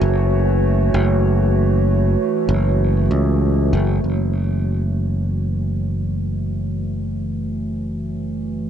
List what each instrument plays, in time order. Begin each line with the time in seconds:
Already playing: ambient pad E3 A3 F#4 C#5
0.01 fingered electric bass F#1
0.94 fingered electric bass F#1
2.49 fingered electric bass F#1
3.11 fingered electric bass C#2
3.73 fingered electric bass F#1
4.04 fingered electric bass F#1